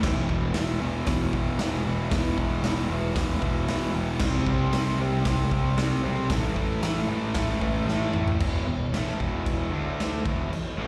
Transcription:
0.03 picked electric bass E1, distorted electric guitar E2 B2 E3, kick, snare, crash
0.29 distorted electric guitar E2 B2 E3, kick
0.54 picked electric bass E1, distorted electric guitar E2 B2 E3, snare, open hi-hat
0.80 picked electric bass E1, distorted electric guitar E2 B2 E3
1.06 picked electric bass E1, distorted electric guitar E2 B2 E3, kick, snare, open hi-hat
1.33 picked electric bass E1, distorted electric guitar E2 B2 E3, kick
1.59 picked electric bass E1, distorted electric guitar E2 B2 E3, snare, open hi-hat
1.85 picked electric bass E1, distorted electric guitar E2 B2 E3
2.11 picked electric bass E1, distorted electric guitar E2 B2 E3, kick, snare, open hi-hat
2.37 picked electric bass E1, distorted electric guitar E2 B2 E3, kick
2.62 picked electric bass E1, distorted electric guitar E2 B2 E3, snare, open hi-hat
2.88 picked electric bass E1, distorted electric guitar E2 B2 E3
3.16 picked electric bass E1, distorted electric guitar E2 B2 E3, kick, snare, open hi-hat
3.42 picked electric bass E1, distorted electric guitar E2 B2 E3, kick
3.67 picked electric bass E1, distorted electric guitar E2 B2 E3, snare, open hi-hat
3.93 picked electric bass E1, distorted electric guitar E2 B2 E3
4.19 picked electric bass C2, distorted electric guitar C3 G3 C4, kick, snare, crash
4.46 distorted electric guitar C3 G3 C4, kick
4.72 picked electric bass C2, distorted electric guitar C3 G3 C4, snare, open hi-hat
4.98 picked electric bass C2, distorted electric guitar C3 G3 C4
5.25 picked electric bass C2, distorted electric guitar C3 G3 C4, kick, snare, open hi-hat
5.51 picked electric bass C2, distorted electric guitar C3 G3 C4, kick
5.77 picked electric bass C2, distorted electric guitar C3 G3 C4, snare, open hi-hat
6.03 picked electric bass B1, distorted electric guitar C3 G3 C4
6.30 picked electric bass A1, distorted electric guitar A2 E3 A3, kick, snare, open hi-hat
6.55 picked electric bass A1, distorted electric guitar A2 E3 A3, kick
6.82 picked electric bass A1, distorted electric guitar A2 E3 A3, snare, open hi-hat
7.08 picked electric bass A1, distorted electric guitar A2 E3 A3
7.34 picked electric bass A1, distorted electric guitar A2 E3 A3, kick, snare, open hi-hat
7.61 picked electric bass A1, distorted electric guitar A2 E3 A3, kick
7.85 picked electric bass A1, distorted electric guitar A2 E3, snare
7.90 distorted electric guitar A3
8.12 picked electric bass A1, distorted electric guitar A2 E3, mid tom
8.16 distorted electric guitar A3
8.27 floor tom
8.40 picked electric bass E1, distorted electric guitar E2 B2 E3, kick, crash
8.65 picked electric bass E1, distorted electric guitar E2 B2
8.91 picked electric bass A1, distorted electric guitar A2 E3 A3, snare, crash
9.19 picked electric bass E1, distorted electric guitar E2 B2 E3, kick
9.46 kick, crash
9.72 picked electric bass D2, distorted electric guitar D3 A3 D4
10.00 snare, crash
10.24 picked electric bass E1, distorted electric guitar E2 B2 E3, kick
10.51 muted picked electric bass stroke, muted distorted electric guitar stroke, crash
10.77 picked electric bass A1, distorted electric guitar A2 E3 A3

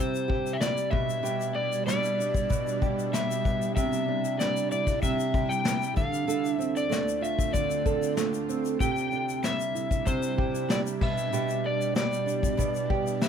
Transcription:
Already playing: ambient pad C3 G3 D4 E4, nylon-string guitar C3 G3 E4 G4, electric slide guitar C5
0.14 shaker
0.28 nylon-string guitar G4, kick
0.46 shaker
0.53 electric slide guitar E5
0.61 nylon-string guitar G3, electric slide guitar D5, snare, shaker
0.77 shaker
0.90 nylon-string guitar B2, ambient pad B2, electric slide guitar E5, kick
1.09 shaker
1.23 nylon-string guitar B2 G4, shaker
1.40 shaker
1.54 nylon-string guitar B3, electric slide guitar D5
1.72 shaker
1.86 nylon-string guitar G3, electric slide guitar D5, snare, shaker
1.89 shaker
2.03 shaker
2.05 shaker
2.18 nylon-string guitar D4, shaker
2.34 kick, shaker
2.36 shaker
2.50 nylon-string guitar B2, kick, shaker
2.52 shaker
2.66 shaker
2.68 shaker
2.81 nylon-string guitar G4, kick, shaker
2.99 shaker
3.13 nylon-string guitar G3, electric slide guitar E5, snare, shaker
3.30 shaker
3.45 nylon-string guitar B3, kick, shaker
3.62 shaker
3.76 ambient pad C3 E4, nylon-string guitar C3 G4, electric slide guitar E5, kick, shaker
3.92 shaker
4.08 nylon-string guitar D4
4.25 shaker
4.39 nylon-string guitar G3, electric slide guitar D5, snare, shaker
4.56 shaker
4.72 nylon-string guitar E4, electric slide guitar D5, shaker
4.87 kick, snare, shaker
5.02 nylon-string guitar C3, electric slide guitar E5, kick, shaker
5.19 shaker
5.34 nylon-string guitar G4, kick, shaker
5.49 electric slide guitar G5, shaker
5.65 nylon-string guitar G3, snare, shaker
5.68 shaker
5.81 shaker
5.83 shaker
5.96 ambient pad D2 D3 C4 F4, nylon-string guitar D3, electric slide guitar F5, kick, shaker
6.13 shaker
6.27 nylon-string guitar D3 A4, shaker
6.44 shaker
6.46 shaker
6.53 electric slide guitar E5
6.59 nylon-string guitar C4, shaker
6.76 electric slide guitar D5, shaker
6.90 nylon-string guitar A3, snare, shaker
7.08 shaker
7.21 nylon-string guitar F4, electric slide guitar E5, shaker
7.39 kick, shaker
7.53 nylon-string guitar D3, electric slide guitar D5, kick, shaker
7.70 shaker
7.86 nylon-string guitar A4, kick, shaker
8.02 shaker
8.17 nylon-string guitar A3, snare, shaker
8.33 shaker
8.49 nylon-string guitar C4, shaker
8.64 shaker
8.79 ambient pad C3 G3 D4 E4, nylon-string guitar C3 G4, electric slide guitar G5, kick, shaker
8.96 shaker
8.98 shaker
9.11 nylon-string guitar D4, shaker
9.29 shaker
9.43 nylon-string guitar G3, electric slide guitar E5, snare, shaker
9.59 shaker
9.75 nylon-string guitar E4, shaker
9.91 kick, shaker
10.06 nylon-string guitar C3, electric slide guitar C5, kick, shaker
10.23 shaker
10.38 nylon-string guitar G4, kick
10.55 shaker
10.69 nylon-string guitar G3, electric slide guitar D5, snare, shaker
10.86 shaker
11.01 nylon-string guitar B2, ambient pad B2 E4, electric slide guitar E5, kick, crash
11.17 shaker
11.33 nylon-string guitar B2 G4, shaker
11.48 shaker
11.50 shaker
11.65 nylon-string guitar B3, electric slide guitar D5
11.81 shaker
11.95 nylon-string guitar G3, electric slide guitar D5, snare, shaker
11.97 shaker
12.12 shaker
12.26 nylon-string guitar D4, shaker
12.43 kick, shaker
12.57 nylon-string guitar B2, kick, shaker
12.60 shaker
12.74 shaker
12.76 shaker
12.90 nylon-string guitar G4, kick
13.06 shaker
13.22 nylon-string guitar G3, electric slide guitar E5, snare, shaker

